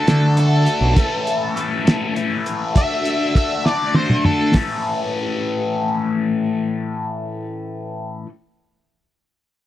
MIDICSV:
0, 0, Header, 1, 5, 480
1, 0, Start_track
1, 0, Key_signature, 3, "major"
1, 0, Tempo, 598205
1, 777, Time_signature, 6, 3, 24, 8
1, 7754, End_track
2, 0, Start_track
2, 0, Title_t, "Lead electric guitar"
2, 0, Program_c, 0, 29
2, 0, Note_on_c, 0, 69, 79
2, 293, Note_off_c, 0, 69, 0
2, 318, Note_on_c, 0, 69, 70
2, 1710, Note_off_c, 0, 69, 0
2, 2226, Note_on_c, 0, 76, 83
2, 2684, Note_off_c, 0, 76, 0
2, 2702, Note_on_c, 0, 76, 68
2, 2929, Note_off_c, 0, 76, 0
2, 2939, Note_on_c, 0, 74, 72
2, 3168, Note_off_c, 0, 74, 0
2, 3173, Note_on_c, 0, 72, 79
2, 3405, Note_off_c, 0, 72, 0
2, 3413, Note_on_c, 0, 69, 70
2, 3645, Note_off_c, 0, 69, 0
2, 7754, End_track
3, 0, Start_track
3, 0, Title_t, "Overdriven electric guitar"
3, 0, Program_c, 1, 29
3, 57, Note_on_c, 1, 50, 75
3, 63, Note_on_c, 1, 62, 92
3, 64, Note_on_c, 1, 57, 81
3, 68, Note_on_c, 1, 66, 87
3, 285, Note_off_c, 1, 50, 0
3, 286, Note_off_c, 1, 62, 0
3, 289, Note_off_c, 1, 66, 0
3, 293, Note_off_c, 1, 57, 0
3, 294, Note_on_c, 1, 50, 71
3, 296, Note_on_c, 1, 57, 76
3, 296, Note_on_c, 1, 62, 77
3, 299, Note_on_c, 1, 66, 85
3, 760, Note_off_c, 1, 50, 0
3, 761, Note_off_c, 1, 62, 0
3, 762, Note_off_c, 1, 66, 0
3, 765, Note_on_c, 1, 45, 78
3, 767, Note_off_c, 1, 57, 0
3, 771, Note_on_c, 1, 52, 80
3, 771, Note_on_c, 1, 57, 78
3, 773, Note_on_c, 1, 61, 89
3, 779, Note_on_c, 1, 64, 95
3, 1235, Note_off_c, 1, 45, 0
3, 1242, Note_off_c, 1, 52, 0
3, 1243, Note_off_c, 1, 61, 0
3, 1243, Note_off_c, 1, 64, 0
3, 1245, Note_on_c, 1, 45, 63
3, 1248, Note_off_c, 1, 57, 0
3, 1251, Note_on_c, 1, 57, 74
3, 1252, Note_on_c, 1, 52, 76
3, 1253, Note_on_c, 1, 61, 80
3, 1253, Note_on_c, 1, 64, 79
3, 1471, Note_off_c, 1, 45, 0
3, 1474, Note_off_c, 1, 52, 0
3, 1477, Note_off_c, 1, 61, 0
3, 1480, Note_on_c, 1, 45, 72
3, 1482, Note_off_c, 1, 57, 0
3, 1483, Note_off_c, 1, 64, 0
3, 1483, Note_on_c, 1, 52, 73
3, 1485, Note_on_c, 1, 57, 75
3, 1487, Note_on_c, 1, 61, 84
3, 1492, Note_on_c, 1, 64, 88
3, 1705, Note_off_c, 1, 45, 0
3, 1712, Note_off_c, 1, 52, 0
3, 1714, Note_on_c, 1, 45, 70
3, 1715, Note_off_c, 1, 61, 0
3, 1719, Note_off_c, 1, 64, 0
3, 1721, Note_on_c, 1, 52, 75
3, 1722, Note_off_c, 1, 57, 0
3, 1725, Note_on_c, 1, 57, 71
3, 1725, Note_on_c, 1, 61, 68
3, 1728, Note_on_c, 1, 64, 70
3, 2188, Note_off_c, 1, 45, 0
3, 2192, Note_off_c, 1, 52, 0
3, 2193, Note_off_c, 1, 61, 0
3, 2195, Note_off_c, 1, 64, 0
3, 2202, Note_off_c, 1, 57, 0
3, 2202, Note_on_c, 1, 50, 79
3, 2206, Note_on_c, 1, 57, 78
3, 2209, Note_on_c, 1, 62, 80
3, 2213, Note_on_c, 1, 66, 84
3, 2675, Note_off_c, 1, 50, 0
3, 2675, Note_off_c, 1, 57, 0
3, 2682, Note_off_c, 1, 62, 0
3, 2684, Note_off_c, 1, 66, 0
3, 2684, Note_on_c, 1, 50, 67
3, 2685, Note_on_c, 1, 57, 68
3, 2692, Note_on_c, 1, 62, 68
3, 2693, Note_on_c, 1, 66, 71
3, 2914, Note_off_c, 1, 50, 0
3, 2917, Note_off_c, 1, 57, 0
3, 2918, Note_off_c, 1, 62, 0
3, 2920, Note_off_c, 1, 66, 0
3, 2924, Note_on_c, 1, 50, 71
3, 2926, Note_on_c, 1, 57, 74
3, 2928, Note_on_c, 1, 62, 81
3, 2930, Note_on_c, 1, 66, 72
3, 3152, Note_off_c, 1, 50, 0
3, 3160, Note_off_c, 1, 57, 0
3, 3160, Note_off_c, 1, 66, 0
3, 3161, Note_on_c, 1, 50, 59
3, 3163, Note_off_c, 1, 62, 0
3, 3169, Note_on_c, 1, 57, 64
3, 3169, Note_on_c, 1, 66, 78
3, 3172, Note_on_c, 1, 62, 72
3, 3632, Note_off_c, 1, 50, 0
3, 3632, Note_on_c, 1, 45, 72
3, 3635, Note_off_c, 1, 57, 0
3, 3635, Note_off_c, 1, 66, 0
3, 3637, Note_off_c, 1, 62, 0
3, 3644, Note_on_c, 1, 52, 75
3, 3651, Note_on_c, 1, 57, 74
3, 3657, Note_on_c, 1, 61, 82
3, 3669, Note_on_c, 1, 69, 90
3, 6616, Note_off_c, 1, 45, 0
3, 6627, Note_off_c, 1, 52, 0
3, 6634, Note_off_c, 1, 57, 0
3, 6640, Note_off_c, 1, 61, 0
3, 6653, Note_off_c, 1, 69, 0
3, 7754, End_track
4, 0, Start_track
4, 0, Title_t, "Picked electric bass"
4, 0, Program_c, 2, 34
4, 64, Note_on_c, 2, 50, 85
4, 530, Note_off_c, 2, 50, 0
4, 650, Note_on_c, 2, 35, 68
4, 746, Note_off_c, 2, 35, 0
4, 7754, End_track
5, 0, Start_track
5, 0, Title_t, "Drums"
5, 60, Note_on_c, 9, 42, 68
5, 65, Note_on_c, 9, 38, 94
5, 140, Note_off_c, 9, 42, 0
5, 145, Note_off_c, 9, 38, 0
5, 297, Note_on_c, 9, 42, 56
5, 377, Note_off_c, 9, 42, 0
5, 532, Note_on_c, 9, 42, 47
5, 612, Note_off_c, 9, 42, 0
5, 774, Note_on_c, 9, 36, 96
5, 774, Note_on_c, 9, 42, 62
5, 854, Note_off_c, 9, 42, 0
5, 855, Note_off_c, 9, 36, 0
5, 1018, Note_on_c, 9, 42, 50
5, 1098, Note_off_c, 9, 42, 0
5, 1259, Note_on_c, 9, 42, 50
5, 1339, Note_off_c, 9, 42, 0
5, 1501, Note_on_c, 9, 42, 64
5, 1506, Note_on_c, 9, 38, 91
5, 1582, Note_off_c, 9, 42, 0
5, 1587, Note_off_c, 9, 38, 0
5, 1736, Note_on_c, 9, 42, 49
5, 1816, Note_off_c, 9, 42, 0
5, 1974, Note_on_c, 9, 42, 50
5, 2054, Note_off_c, 9, 42, 0
5, 2211, Note_on_c, 9, 42, 67
5, 2212, Note_on_c, 9, 36, 86
5, 2292, Note_off_c, 9, 36, 0
5, 2292, Note_off_c, 9, 42, 0
5, 2450, Note_on_c, 9, 42, 52
5, 2530, Note_off_c, 9, 42, 0
5, 2691, Note_on_c, 9, 36, 64
5, 2695, Note_on_c, 9, 42, 50
5, 2771, Note_off_c, 9, 36, 0
5, 2776, Note_off_c, 9, 42, 0
5, 2933, Note_on_c, 9, 38, 46
5, 3014, Note_off_c, 9, 38, 0
5, 3165, Note_on_c, 9, 48, 58
5, 3245, Note_off_c, 9, 48, 0
5, 3287, Note_on_c, 9, 47, 50
5, 3367, Note_off_c, 9, 47, 0
5, 3407, Note_on_c, 9, 45, 68
5, 3487, Note_off_c, 9, 45, 0
5, 3640, Note_on_c, 9, 46, 64
5, 3645, Note_on_c, 9, 38, 72
5, 3646, Note_on_c, 9, 36, 72
5, 3720, Note_off_c, 9, 46, 0
5, 3725, Note_off_c, 9, 38, 0
5, 3726, Note_off_c, 9, 36, 0
5, 7754, End_track
0, 0, End_of_file